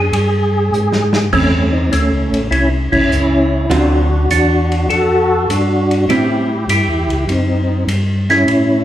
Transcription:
Already playing: F#2 G#4
0.12 G2, ride
0.72 G#2, hi-hat pedal
0.92 snare
1.13 snare
1.32 E2 G3 A3 C4 C#4, kick, crash
1.72 C4 D#4
1.91 D2 A3 C#4, hi-hat pedal, ride
2.10 C#2
2.30 A1, ride
2.50 C2 C#4 E4, ride
2.92 C2 C#4 E4, kick, crash
3.10 C#2, hi-hat pedal
3.69 D2 D3 F#3 C4 D4 F4 F#4, ride
4.30 E2 D4 F#4, hi-hat pedal, ride
4.72 ride
4.89 F2 F#4 A4, ride
5.49 G2 D4 F#4, hi-hat pedal, ride
5.91 ride
6.08 A2 G3 C4 C#4 E4 G4, ride
6.68 G2 E4 G4, hi-hat pedal, ride
6.87 E2
7.08 C#2, ride
7.27 F#2 C4 D#4, ride
7.87 G2, hi-hat pedal, ride
8.30 C#4 E4, snare, ride
8.47 A2, ride

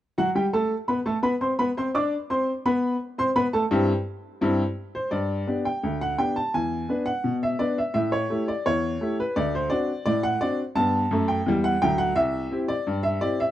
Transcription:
0.18 F#3 F#4 F#5
0.35 G3 G4 G5
0.53 A3 A4 A5
0.88 B3 B4 B5
1.06 A3 A4 A5
1.23 B3 B4 B5
1.41 C4 C5 C6
1.59 B3 B4 B5
1.77 C4 C5 C6
1.95 D4 D5 D6
2.30 C4 C5 C6
2.66 B3 B4 B5
3.18 C4 C5 C6
3.36 B3 B4 B5
3.53 A3 A4 A5
3.71 G2 C4 E4 G4
4.41 G2 C4 E4 G4
4.95 C5
5.11 G2 D5
5.47 B3 D4 G4
5.65 G5
5.83 D2
6.01 F#5
6.18 B3 D4 G4 G5
6.36 A5
6.54 E2 G#5
6.89 B3 D4 B4
7.06 F#5
7.24 B2
7.43 E5
7.59 B3 D4 B4 D5
7.78 E5
7.94 A2 E5
8.12 C#5
8.30 A3 E4 G4
8.48 D5
8.66 E2 C#5
9.01 A3 E4 G4
9.20 B4
9.36 D2 D5
9.55 C5
9.70 C4 D4 F#4 D5
10.06 A2 D5
10.23 F#5
10.41 C4 D4 F#4 D5
10.75 G2 B3 A5
11.11 F#2 A3
11.28 G5
11.46 E2 G3
11.64 F#5
11.82 D2 F#3 G5
11.98 F#5
12.15 C2 E5
12.51 C4 E4 G4
12.68 D5
12.87 G2
13.03 E5
13.21 C4 E4 G4 D5
13.40 E5

